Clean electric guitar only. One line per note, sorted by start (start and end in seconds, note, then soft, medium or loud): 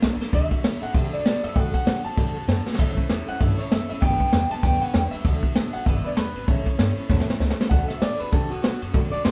0.34 0.83 E5 loud
0.83 0.96 F#5 medium
0.96 1.14 E5 loud
1.13 1.45 D5 loud
1.44 1.56 E5 medium
1.56 1.73 F#5 loud
1.74 2.04 F#5 loud
2.05 2.62 A5 loud
2.79 3.28 E5 medium
3.29 3.40 F#5 medium
3.40 3.58 E5 loud
3.59 3.70 C#5 medium
3.72 3.88 E5 loud
3.90 4.01 E5 loud
4.02 4.51 G5 loud
4.51 4.63 A5 medium
4.63 4.81 G5 loud
4.81 4.93 F#5 medium
4.94 4.99 G5 medium
5.11 5.69 E5 loud
5.73 5.86 F#5 medium
5.86 6.07 E5 loud
6.06 6.11 D5 medium
6.17 6.48 B4 medium
6.48 7.36 C#5 medium
7.70 7.88 F#5 loud
7.88 8.01 E5 medium
8.02 8.19 D5 medium
8.20 8.32 B4 medium
8.32 8.50 A4 loud
8.50 8.61 F#4 medium
8.62 8.80 F#4 medium
9.12 9.24 D5 loud
9.25 9.31 C5 medium